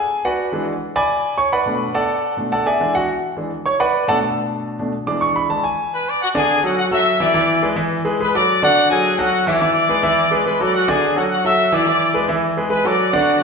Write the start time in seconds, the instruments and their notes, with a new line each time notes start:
Already playing: grand piano G#4 G#5
0.25 grand piano F#4 B4 D5 F#5
0.52 grand piano E3 G#3 D4
0.96 grand piano D5 G#5 B5 D6
1.38 grand piano C#5 C#6
1.52 grand piano B4 D5 F#5 B5
1.66 grand piano B2 A3 D4
1.94 grand piano A4 D5 F#5 A5
2.37 grand piano B2 A3 D4
2.52 grand piano A4 D5 F#5 A5
2.66 grand piano G#4 D5 E5 G#5
2.80 grand piano E3 G#3 D4
2.95 grand piano F#4 F#5
3.37 grand piano E3 G#3 D4
3.66 grand piano C#5 C#6
3.80 grand piano B4 D5 F#5 B5
4.08 grand piano B2 A3 D4 A4 D5 F#5 A5
4.79 grand piano B2 A3 D4
5.07 grand piano E3 G#3 D4 D6
5.21 grand piano C#6
5.36 grand piano B5
5.49 grand piano E3 G#3 D4 A5
5.64 grand piano G#5
5.93 trumpet section B4 B5
6.08 trumpet section D5 D6
6.22 trumpet section F#4 F#5
6.35 grand piano D3 D4 D5, trumpet section G#4 G#5
6.63 grand piano F#3 F#4 A4, trumpet section F#4 F#5
6.78 trumpet section F#4 F#5
6.91 grand piano F#3 F#4 A4, trumpet section E5 E6
7.20 grand piano E3 E4 E5, trumpet section D5 D6
7.34 grand piano E3 E4 E5
7.63 grand piano G#3 G#4 B4
7.76 grand piano E3 E4 E5
8.05 grand piano G#3 G#4 B4
8.20 grand piano G#3 G#4 B4, trumpet section B4 B5
8.35 grand piano F#3 F#4 A4, trumpet section D5 D6
8.63 grand piano D3 D4 D5, trumpet section F#4 F#5
8.90 grand piano F#3 F#4 A4, trumpet section G#4 G#5
9.18 grand piano F#3 F#4 A4, trumpet section F#4 F#5
9.46 grand piano E3 E4 E5, trumpet section D5 D6
9.62 grand piano E3 E4 E5
9.89 grand piano G#3 G#4 B4
10.03 grand piano E3 E4 E5
10.31 grand piano G#3 G#4 B4
10.45 grand piano G#3 G#4 B4, trumpet section B4 B5
10.60 grand piano F#3 F#4 A4, trumpet section D5 D6
10.75 trumpet section F#4 F#5
10.88 grand piano D3 D4 D5, trumpet section G#4 G#5
11.16 grand piano F#3 F#4 A4, trumpet section F#4 F#5
11.31 trumpet section F#4 F#5
11.44 grand piano F#3 F#4 A4, trumpet section E5 E6
11.72 grand piano E3 E4 E5, trumpet section D5 D6
11.86 grand piano E3 E4 E5
12.14 grand piano G#3 G#4 B4
12.28 grand piano E3 E4 E5
12.57 grand piano G#3 G#4 B4
12.70 grand piano G#3 G#4 B4, trumpet section B4 B5
12.85 grand piano F#3 F#4 A4, trumpet section D5 D6
13.12 grand piano D3 D4 D5, trumpet section F#4 F#5